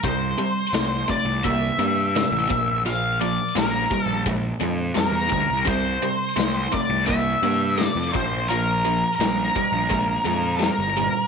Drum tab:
HH |xxxxxxxx|xxxxxxxx|xxxxxxxx|xxxxxxxx|
TB |--x---x-|--x---x-|--x---x-|--x---x-|
SD |--o---o-|--o---o-|--o---o-|--o---o-|
BD |o--oo--o|---oo--o|o--oo--o|---oo---|